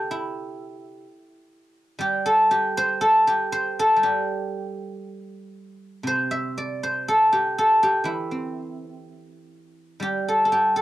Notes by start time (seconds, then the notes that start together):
Already playing: C3 G4 A4 C5 D5
0.11 E4
1.99 G3 G4
2.26 A4
2.51 G4
2.77 C5
3.01 A4
3.27 G4
3.52 C5
3.79 A4
3.96 G3
4.03 G4
6.03 C3 C5
6.31 E5
6.58 D5
6.83 C5
7.08 A4
7.33 G4
7.58 A4
7.83 G4
8.04 E3 E4
8.31 C4
10.00 G3 G4
10.28 A4
10.45 A4
10.52 G4
10.76 A4